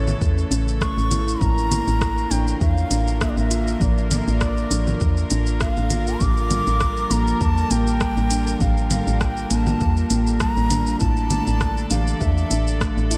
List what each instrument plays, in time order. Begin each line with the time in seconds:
Already playing: fm bass A1, string section C#3 E3 A3 A4, synth stab E3 A3 C#4 A4 C#5, bansuri C#5
0.08 low conga, shaker
0.21 fm bass E2, kick, shaker
0.38 shaker
0.51 fm bass A1, steel tongue drum C#4, closed hi-hat, shaker
0.68 shaker
0.81 steel tongue drum A3, bansuri C#6, kick, cross-stick, shaker
0.97 fm bass A1, steel tongue drum C#4, shaker
1.11 steel tongue drum E4, closed hi-hat, low conga, shaker
1.27 steel tongue drum E4, shaker
1.40 fm bass A1, string section D3 A#3 F4 A#4, synth stab F3 A#3 D4, bansuri A#5, kick, shaker
1.44 synth stab A#4
1.58 shaker
1.71 steel tongue drum A#3, closed hi-hat, low conga, shaker
1.88 fm bass A1, shaker
2.01 kick, cross-stick, shaker
2.18 shaker
2.31 fm bass A1, synth stab F3 A#3 D4 C#5, steel tongue drum D4, bansuri G5, closed hi-hat, shaker
2.48 shaker
2.61 fm bass E2, bansuri F5, kick, shaker
2.78 shaker
2.91 fm bass A1, steel tongue drum D4, closed hi-hat, shaker
3.08 shaker
3.21 steel tongue drum A#3, bansuri E5, kick, cross-stick, shaker
3.29 bansuri D5
3.37 fm bass A1, steel tongue drum D4, bansuri E5, shaker
3.50 steel tongue drum F4, closed hi-hat, shaker
3.67 steel tongue drum F4, shaker
3.79 fm bass A1, synth stab F3 A#3 D4 A#4, bansuri D5, kick, shaker
3.98 shaker
4.11 steel tongue drum A#3, bansuri D5, closed hi-hat, low conga, shaker
4.19 bansuri E5
4.26 fm bass A1, bansuri E5, shaker
4.31 bansuri D5
4.41 kick, cross-stick, shaker
4.57 shaker
4.70 fm bass A1, synth stab F3 A#3 D4 C#5, steel tongue drum D4, closed hi-hat, shaker
4.87 low conga, shaker
5.01 fm bass E2, kick, shaker
5.17 shaker
5.30 fm bass A1, steel tongue drum D4, closed hi-hat, shaker
5.47 shaker
5.61 steel tongue drum A#3, bansuri F5, kick, cross-stick, shaker
5.77 fm bass A1, steel tongue drum D4, shaker
5.90 steel tongue drum F4, closed hi-hat, low conga, shaker
6.07 steel tongue drum F4, shaker
6.19 fm bass A1, synth stab F3 A#3 D4, string section G3, bansuri D6, kick, shaker
6.23 synth stab G4
6.37 shaker
6.51 steel tongue drum G3, closed hi-hat, low conga, shaker
6.67 fm bass A1, shaker
6.81 kick, cross-stick, shaker
6.97 shaker
7.10 fm bass A1, synth stab F3 A#3 D4 A4, steel tongue drum A#3, bansuri A#5, closed hi-hat, shaker
7.27 shaker
7.41 fm bass E2, bansuri A5, kick, shaker
7.58 shaker
7.70 fm bass A1, steel tongue drum A#3, bansuri G5, closed hi-hat, shaker
7.87 shaker
8.01 steel tongue drum G3, kick, cross-stick, shaker
8.17 fm bass A1, steel tongue drum A#3, shaker
8.31 steel tongue drum D4, closed hi-hat, shaker
8.47 steel tongue drum D4, shaker
8.59 fm bass A1, synth stab F3 A#3 D4, bansuri F5, kick, shaker
8.63 synth stab G4
8.77 shaker
8.91 steel tongue drum G3, bansuri F5, closed hi-hat, low conga, shaker
9.07 fm bass A1, shaker
9.21 bansuri G5 A5, kick, cross-stick, shaker
9.37 shaker
9.49 fm bass A1, synth stab F3 A#3 D4 A4, steel tongue drum A#3, bansuri A5, closed hi-hat, shaker
9.67 low conga, shaker
9.81 fm bass E2, kick, shaker
9.97 shaker
10.10 fm bass A1, steel tongue drum A#3, closed hi-hat, shaker
10.27 shaker
10.40 steel tongue drum G3, bansuri A5, kick, cross-stick, shaker
10.51 bansuri A#5
10.57 fm bass A1, steel tongue drum A#3, shaker
10.71 steel tongue drum D4, closed hi-hat, low conga, shaker
10.87 steel tongue drum D4, shaker
10.98 fm bass A1, synth stab A3 D4 E4, string section A4 D5, bansuri A5, kick, shaker
11.02 synth stab F4
11.17 shaker
11.31 steel tongue drum A3, closed hi-hat, low conga, shaker
11.47 fm bass A1, shaker
11.61 kick, cross-stick, shaker
11.77 shaker
11.90 fm bass A1, synth stab E3 A3 D4 G4, steel tongue drum D4, bansuri F5, closed hi-hat, shaker
12.07 shaker
12.19 fm bass E2, bansuri E5, kick, shaker
12.38 shaker
12.50 fm bass A1, steel tongue drum D4, closed hi-hat, shaker
12.67 shaker
12.81 steel tongue drum A3, kick, cross-stick, shaker
12.97 fm bass A1, steel tongue drum D4, shaker
13.10 steel tongue drum E4, bansuri E5, closed hi-hat, shaker